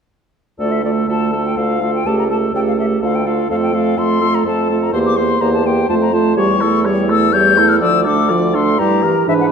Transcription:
0.59 D2 A3 F4 A4 D5
0.72 E5
0.84 A3 F4 A4 D5
1.08 D2 A3 F4 A4 A5
1.33 A3 F4 A4
1.46 G5
1.57 D2 A3 F4 A4 F5
1.81 A3 F4 A4
1.95 G5
2.06 C#2 A3 G4 A4 A5
2.19 A#5
2.30 A3 G4 A4 A5
2.54 C#2 A3 G4 A4 G5
2.68 F5
2.78 A3 G4 A4 E5
3.02 D2 A3 F4 A4 F5
3.15 G5
3.26 A3 F4 A4 F5
3.49 F2 A3 F4 A4 F5
3.62 G5
3.73 A3 F4 A4 F5
3.97 F2 A3 F4 A4 C6
4.21 A3 F4 A4
4.35 A#5
4.45 F2 A3 F4 A4 A5
4.70 A3 F4 A4
4.82 A#5
4.93 E2 A#3 G4 C5 C6
5.06 D6
5.17 A#3 G4 C5 C6
5.41 E2 A#3 G4 C5 A#5
5.54 A5
5.65 A#3 G4 C5 G5
5.89 F2 A3 F4 C5 A5
6.02 A#5
6.13 A3 F4 C5 A5
6.37 E2 G3 G4 C#5 C#6
6.61 A3 E4 A4
6.85 G3 G4 C#5
7.09 A3 E4 A4 E6
7.33 G3 G4 C#5 G6
7.58 A3 E4 A4
7.69 F6
7.81 D2 F3 F4 D5 E6
8.05 A3 D4 A4 D6
8.30 F3 F4 D5
8.54 A3 D4 A4 C6
8.78 G2 G3 E4 G4 A#5
9.03 E3 G4 A#4
9.28 G#2 E3 D4 B4 E5
9.41 F#5

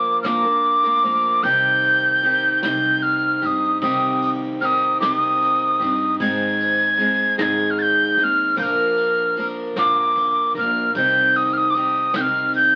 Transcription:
Already playing: F3 A#3 D4 A#4 D6
0.22 A#2 F3 A#3 D4 A#4 D6 F6, kick, snare, closed hi-hat
0.43 A#3 D4 A#4
0.64 closed hi-hat
0.83 A#3 D4 A#4
1.03 F3 A#3 D4 A#4, closed hi-hat
1.43 C2 C3 D#3 C4 D#4 G4 G6, kick, ride
1.83 ride
2.23 D#3 C4 D#4 G4, ride
2.63 C2 C3 D#3 C4 D#4 G4 G6, snare, ride
3.02 F6, ride
3.42 G2 C4 D#4 G4 F6, ride
3.46 D#6
3.82 C2 C3 D#3 C4 D#4 G4 D#6, kick, ride
4.22 ride
4.60 D#3 C4 D#4 G4 F6, ride
4.65 D#6
5.00 C2 C3 D#3 C4 D#4 G4 D6, snare, ride
5.14 D#6
5.42 ride
5.80 G2 C4 D#4 G4, ride
6.20 G#1 G#2 D#3 G#3 C4 D#4 G#4 G#6, kick, ride
6.60 ride
6.98 G#3 C4 D#4 G#4, ride
7.38 G#1 G#2 D#3 G#3 C4 D#4 G#4 A#6, snare, ride
7.42 G#6
7.70 F6
7.78 G6 A6, ride
8.17 D#2 G#3 C4 D#4 G#4 G6, ride
8.24 F6
8.56 A#1 A#2 F3 A#3 D4 A#4 G6, kick, ride
8.63 F6
8.97 ride
9.36 F3 A#3 D4 A#4, ride
9.76 A#1 A#2 F3 A#3 D4 A#4 D6, snare, ride
10.16 kick, ride
10.55 A#1 A#3 D4 A#4 F6, ride
10.95 C2 C3 D#3 C4 D#4 G4 G6, kick, ride
11.35 D#6, ride
11.53 F6
11.57 D#6
11.70 D6
11.74 D#3 C4 D#4 G4 D#6, ride
12.14 C2 C3 D#3 C4 D#4 G4 G6, snare, ride
12.21 F6
12.54 G6, ride

